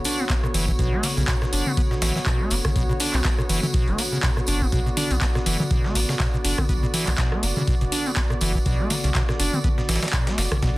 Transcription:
Already playing: D3 B3 F#4 C#5
0.04 D4, closed hi-hat, open hi-hat, tambourine
0.19 B3, tambourine
0.29 B3, kick, snare, clap, closed hi-hat
0.43 B2, cross-stick
0.54 F#1 E3, closed hi-hat, open hi-hat, tambourine
0.68 E3, kick, tambourine
0.79 B1 B2, kick, closed hi-hat, tambourine
0.93 A3
1.03 B3, snare, closed hi-hat, open hi-hat, mid tom, tambourine
1.17 B1 C#3, closed hi-hat, tambourine
1.28 B2, kick, snare, clap, closed hi-hat
1.42 B2, cross-stick, snare
1.53 F#1 D4, closed hi-hat, open hi-hat, tambourine
1.66 B3, mid tom, tambourine
1.77 B3, kick, closed hi-hat, mid tom, tambourine
1.91 B2, snare
2.02 A1 E3, snare, closed hi-hat, open hi-hat, tambourine
2.16 E3, snare, tambourine
2.26 B2, kick, clap, closed hi-hat
2.40 A3
2.50 F#1 B3, closed hi-hat, open hi-hat, tambourine
2.65 C#3, kick, cross-stick, closed hi-hat, mid tom, tambourine
2.76 B1 B2, kick, closed hi-hat, tambourine
2.89 B2
3.00 D4, closed hi-hat, open hi-hat, tambourine
3.14 B1 B3, clap, closed hi-hat, tambourine
3.25 B3, kick, snare, clap, closed hi-hat, tambourine
3.39 B2, cross-stick
3.49 F#1 E3, closed hi-hat, open hi-hat, tambourine
3.63 E3, mid tom, tambourine
3.74 B2, kick, closed hi-hat, tambourine
3.88 F#1 A3, closed hi-hat
3.98 B3, closed hi-hat, open hi-hat, tambourine
4.12 C#3, tambourine
4.23 B2, kick, snare, clap, closed hi-hat
4.37 B2, cross-stick
4.47 F#1 D4, closed hi-hat, open hi-hat, tambourine
4.61 B3, kick, tambourine
4.72 B1 B2 D5, kick, closed hi-hat, tambourine
4.86 B2
4.97 D4, snare, closed hi-hat, open hi-hat, mid tom, tambourine
5.11 B1 B3, closed hi-hat, tambourine
5.21 B3, kick, snare, clap, closed hi-hat, tambourine
5.35 B2, cross-stick, snare
5.46 F#1 E3, closed hi-hat, open hi-hat, tambourine
5.60 E3, mid tom, tambourine
5.70 B2, kick, closed hi-hat, mid tom, tambourine
5.84 A3, snare
5.95 A1 B3, closed hi-hat, open hi-hat, tambourine
6.09 C#3, snare, tambourine
6.20 B2, kick, snare, clap, closed hi-hat, tambourine
6.34 B2
6.44 F#1 D4, closed hi-hat, open hi-hat, tambourine
6.58 B3, kick, cross-stick, closed hi-hat, mid tom, tambourine
6.69 B1 B3, kick, closed hi-hat, tambourine
6.83 B2
6.94 E3, closed hi-hat, open hi-hat, tambourine
7.07 B1 E3, clap, closed hi-hat, tambourine
7.18 B2, kick, snare, clap, closed hi-hat, tambourine
7.32 A3, cross-stick
7.43 F#1 B3, closed hi-hat, open hi-hat, tambourine
7.56 C#3, mid tom, tambourine
7.67 B2, kick, closed hi-hat, tambourine
7.81 F#1 B2, closed hi-hat
7.92 D4, closed hi-hat, open hi-hat, tambourine
8.06 B3, tambourine
8.16 B3, kick, snare, clap, closed hi-hat
8.30 B2, cross-stick
8.41 F#1 E3, closed hi-hat, open hi-hat, tambourine
8.55 E3, kick, tambourine
8.65 B1 B2, kick, closed hi-hat, tambourine
8.80 A3
8.90 B3, snare, closed hi-hat, open hi-hat, mid tom, tambourine
9.04 B1 C#3, closed hi-hat, tambourine
9.15 B2, kick, snare, clap, closed hi-hat, tambourine
9.29 B2, cross-stick, snare
9.40 F#1 D4, closed hi-hat, open hi-hat, tambourine
9.53 B3, mid tom, tambourine
9.64 B3, kick, closed hi-hat, mid tom, tambourine
9.78 B2, snare
9.89 A1 E3, snare, closed hi-hat, open hi-hat, tambourine
9.96 snare, closed hi-hat
10.02 E3, snare, closed hi-hat, tambourine
10.08 snare, closed hi-hat
10.13 B2, kick, snare, clap, closed hi-hat
10.27 A3, snare, closed hi-hat
10.38 F#1 B3, snare, closed hi-hat, open hi-hat, tambourine
10.52 C#3, kick, cross-stick, closed hi-hat, mid tom, tambourine
10.62 B1 B2, kick, snare, closed hi-hat, tambourine

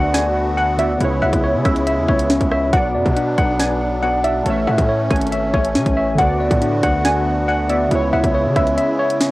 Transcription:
Already playing: D2 D3 A3 B3 D4 F#4 D5 F#5
0.14 D5 G#5, snare, closed hi-hat
0.57 F#5
0.77 D3 B3 F#4 D5 E5, closed hi-hat
0.98 C#2 C#3 G#3 B3 E4, closed hi-hat
1.02 E4 C#5
1.22 C#2 E5 F#5
1.33 C#2, kick, closed hi-hat
1.44 C#5
1.54 C#3
1.65 C#2 C#4 E5, kick, cross-stick, closed hi-hat
1.76 closed hi-hat
1.87 E5, closed hi-hat
1.98 E2
2.08 C#2 C#5, kick
2.19 closed hi-hat
2.30 C#4, snare
2.41 C#2, kick, closed hi-hat
2.52 E5, cross-stick
2.70 B1 B2 F#3 B3 D4 F#5, kick, closed hi-hat
2.74 F#4 D5
2.95 F#2 D5
3.06 B2, kick, closed hi-hat
3.16 D4, closed hi-hat
3.38 B1 F#5, kick, cross-stick, closed hi-hat
3.59 D5 G#5, snare, closed hi-hat
4.02 B2 B3 F#4 D5 F#5
4.24 D5 E5, closed hi-hat
4.43 A1 E3 A3 C#4 A4, closed hi-hat
4.48 C#5 E5
4.67 A2 E5 F#5
4.78 A2, kick, closed hi-hat
4.89 C#5
5.10 G#1 C#4 G#5, kick, cross-stick, closed hi-hat
5.16 closed hi-hat
5.21 closed hi-hat
5.27 closed hi-hat
5.32 E5, closed hi-hat
5.54 A1 C#5, kick
5.65 closed hi-hat
5.75 C#3 C#4 G#5, snare
5.86 A1, kick, closed hi-hat
5.97 E5
6.15 D2 D3 B3 F#4 F#5, kick, closed hi-hat
6.19 F#4 D5
6.40 D5
6.51 A2, kick, closed hi-hat
6.62 D4, closed hi-hat
6.83 D2 F#5, kick, cross-stick, closed hi-hat
7.05 D5 G#5, snare, closed hi-hat
7.48 F#5
7.68 D3 B3 F#4 D5 E5, closed hi-hat
7.88 C#2 C#3 G#3 B3 E4, closed hi-hat
7.93 E4 C#5
8.13 C#2 E5 F#5
8.24 C#2, kick, closed hi-hat
8.34 C#5
8.45 C#3
8.56 C#2 C#4 E5, kick, cross-stick, closed hi-hat
8.67 closed hi-hat
8.77 E5, closed hi-hat
8.99 C#5
9.10 closed hi-hat
9.21 C#4, snare

